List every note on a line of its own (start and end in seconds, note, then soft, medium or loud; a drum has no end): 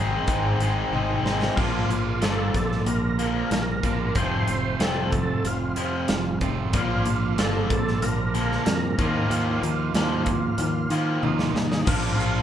0.00 0.20 G#1 medium
0.00 0.27 G#2 medium
0.00 0.27 D#3 medium
0.00 0.28 G#3 medium
0.00 0.28 C4 medium
0.00 0.28 D#4 medium
0.00 0.28 G#4 medium
0.27 0.52 G#1 medium
0.27 0.60 G#2 medium
0.27 0.60 D#3 medium
0.27 0.61 G#3 medium
0.27 0.61 C4 medium
0.27 0.61 D#4 medium
0.27 0.61 G#4 medium
0.27 kick medium
0.27 closed hi-hat medium
0.59 0.83 G#1 medium
0.59 0.92 G#2 medium
0.59 0.93 D#3 medium
0.59 0.93 G#3 medium
0.59 0.93 C4 medium
0.59 0.93 D#4 medium
0.59 0.93 G#4 medium
0.59 closed hi-hat medium
0.91 1.16 G#1 medium
0.91 1.24 G#2 medium
0.91 1.25 D#3 medium
0.91 1.25 G#3 medium
0.91 1.26 C4 medium
0.91 1.26 D#4 loud
0.91 1.26 G#4 medium
0.91 high tom soft
1.23 1.48 G#1 medium
1.23 1.56 G#2 medium
1.23 1.56 D#3 medium
1.23 1.56 G#3 medium
1.23 1.57 C4 medium
1.23 1.57 G#4 medium
1.23 snare medium
1.27 1.57 D#4 medium
1.42 snare medium
1.56 1.85 A#1 medium
1.56 1.88 A#2 medium
1.56 3.82 D3 medium
1.56 1.88 F3 medium
1.56 1.89 A#3 medium
1.56 3.83 D4 medium
1.56 2.24 F4 medium
1.56 3.83 F4 medium
1.56 kick loud
1.56 crash medium
1.88 2.17 A#1 medium
1.88 2.19 A#2 medium
1.88 2.19 F3 medium
1.88 closed hi-hat soft
2.21 2.49 G1 medium
2.21 2.52 A#2 medium
2.21 2.53 F3 medium
2.21 2.53 A#3 medium
2.21 2.89 A4 medium
2.21 snare medium
2.21 closed hi-hat medium
2.54 2.82 A#1 medium
2.54 2.83 A#2 medium
2.54 2.84 F3 medium
2.54 kick medium
2.54 snare soft
2.54 closed hi-hat medium
2.72 snare soft
2.85 3.41 A#1 medium
2.85 3.16 A#2 medium
2.85 3.16 F3 medium
2.85 3.51 A#4 medium
2.85 closed hi-hat medium
3.19 3.49 A#2 medium
3.19 3.50 F3 medium
3.19 3.50 A#3 loud
3.19 closed hi-hat medium
3.51 3.79 A#1 medium
3.51 3.81 A#2 medium
3.51 3.81 F3 medium
3.51 4.18 A#4 medium
3.51 snare medium
3.51 closed hi-hat medium
3.83 4.11 A#1 medium
3.83 4.13 A#2 medium
3.83 4.15 D3 medium
3.83 4.13 F3 medium
3.83 4.15 A#3 medium
3.83 4.14 D4 medium
3.83 4.17 F4 medium
3.83 kick medium
3.83 closed hi-hat medium
4.15 4.43 F1 medium
4.15 4.47 F2 medium
4.15 4.47 C3 medium
4.15 4.47 F3 medium
4.15 6.40 A3 medium
4.15 6.41 C4 medium
4.15 6.41 F4 medium
4.15 4.83 C5 medium
4.15 kick medium
4.15 closed hi-hat medium
4.48 4.76 F1 medium
4.48 4.78 F2 medium
4.48 4.78 C3 medium
4.48 closed hi-hat medium
4.80 5.36 F1 medium
4.80 5.10 F2 medium
4.80 5.11 C3 medium
4.80 5.11 F3 loud
4.80 5.48 A4 medium
4.80 snare loud
4.80 closed hi-hat medium
5.12 5.42 F2 medium
5.12 5.42 C3 medium
5.12 kick medium
5.12 closed hi-hat medium
5.44 5.72 F1 medium
5.44 5.74 F2 medium
5.44 5.74 C3 medium
5.44 6.39 F4 medium
5.44 closed hi-hat medium
5.76 6.07 F2 medium
5.76 6.05 F2 medium
5.76 6.07 C3 medium
5.76 6.08 F3 loud
5.76 closed hi-hat medium
6.08 6.37 F1 medium
6.08 6.38 F2 medium
6.08 6.39 C3 medium
6.08 snare loud
6.08 closed hi-hat medium
6.41 6.73 F1 medium
6.41 6.71 F2 medium
6.41 6.71 C3 medium
6.41 6.74 F3 medium
6.41 6.73 A3 medium
6.41 6.72 C4 medium
6.41 6.76 F4 medium
6.41 kick medium
6.41 closed hi-hat medium
6.73 7.01 A#1 medium
6.73 7.04 A#2 medium
6.73 8.97 D3 medium
6.73 7.04 F3 medium
6.73 7.05 A#3 medium
6.73 8.98 D4 loud
6.73 9.01 F4 medium
6.73 7.42 F4 medium
6.73 kick loud
6.73 closed hi-hat medium
7.05 7.33 A#1 medium
7.05 7.35 A#2 medium
7.05 7.35 F3 medium
7.05 closed hi-hat medium
7.37 7.65 G1 medium
7.37 7.69 A#2 medium
7.37 7.69 F3 medium
7.37 7.69 A#3 loud
7.37 8.05 A4 loud
7.37 snare loud
7.37 closed hi-hat medium
7.70 7.98 A#1 medium
7.70 8.00 A#2 medium
7.70 8.00 F3 medium
7.70 kick medium
7.70 closed hi-hat medium
7.88 snare soft
8.01 8.57 A#1 medium
8.01 8.32 A#2 medium
8.01 8.32 F3 medium
8.01 8.64 A#4 medium
8.01 closed hi-hat medium
8.34 8.65 A#2 medium
8.34 8.65 F3 loud
8.34 8.65 A#3 loud
8.34 closed hi-hat medium
8.52 snare soft
8.66 8.94 F2 medium
8.66 8.95 A#2 medium
8.66 8.96 F3 medium
8.66 9.32 A#4 medium
8.66 snare loud
8.66 closed hi-hat medium
8.98 9.26 D#2 medium
8.98 9.28 D#3 medium
8.98 9.29 F3 loud
8.98 9.29 A#3 loud
8.98 11.22 D#4 medium
8.98 11.23 F4 medium
8.98 kick medium
8.98 closed hi-hat medium
9.29 9.58 D#2 medium
9.29 9.60 D#3 medium
9.29 9.61 F3 medium
9.29 9.61 A#3 medium
9.29 11.51 F4 medium
9.29 closed hi-hat medium
9.63 9.90 D#2 medium
9.63 9.92 D#3 medium
9.63 9.92 F3 medium
9.63 closed hi-hat medium
9.94 10.49 D#2 medium
9.94 10.26 D#3 medium
9.94 10.26 F3 loud
9.94 10.26 A#3 loud
9.94 snare loud
9.94 closed hi-hat medium
10.26 10.56 D#3 medium
10.26 10.56 F3 medium
10.26 kick medium
10.26 closed hi-hat medium
10.58 10.86 D#2 medium
10.58 10.88 D#3 medium
10.58 10.89 F3 medium
10.58 closed hi-hat medium
10.90 11.18 D#3 medium
10.90 11.21 D#3 medium
10.90 11.21 F3 loud
10.90 11.22 A#3 loud
10.90 closed hi-hat medium
11.23 11.51 D#2 medium
11.23 11.52 D#3 medium
11.23 11.52 F3 medium
11.23 11.54 A#3 medium
11.23 11.89 D#4 medium
11.23 11.54 D#4 medium
11.23 11.55 F4 medium
11.23 high tom medium
11.39 snare medium
11.54 11.82 D#2 medium
11.54 11.84 D#3 medium
11.54 11.84 F3 medium
11.54 snare medium
11.72 snare medium
11.85 12.14 A#1 medium
11.85 12.42 A#2 medium
11.85 12.42 F3 medium
11.85 12.42 A#3 medium
11.85 12.42 D4 medium
11.85 12.42 F4 loud
11.85 12.42 F4 medium
11.85 kick loud
11.85 crash loud
11.85 shaker loud
12.17 12.42 A#1 medium
12.17 12.42 F4 medium
12.17 shaker medium